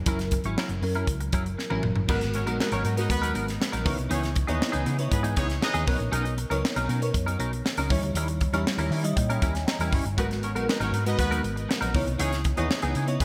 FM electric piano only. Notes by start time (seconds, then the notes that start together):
0.06 F#3 C#4 E4 A#4
0.82 F#3 C#4 E4 A#4
1.70 F#3 C#4 E4 A#4
2.08 G#3 B3 F#4 A#4
2.46 G#3 B3 F#4 A#4
2.96 G#3 B3 F#4 A#4
3.85 B3 D#4 E4 C#5
4.48 B3 D#4 E4 C#5
4.99 B3 D#4 E4 C#5
5.87 B3 C#4 A#4 C#5
5.93 D#4
6.50 B3 D#4 A#4 C#5
7.01 B3 D#4 A#4 C#5
7.90 G3 D#4 E4 C#5
8.53 G3 D#4 E4 C#5
8.91 E5
9.03 G3 D#4 E4 D#5
9.16 G5
9.54 G#5
9.67 A#5
10.17 G#3 B3 F#4 A#4
10.55 G#3 B3 F#4 A#4
11.05 G#3 B3 F#4 B4
11.94 B3 D#4 E4 C#5
12.57 B3 D#4 E4 C#5
13.07 B3 D#4 E4 C#5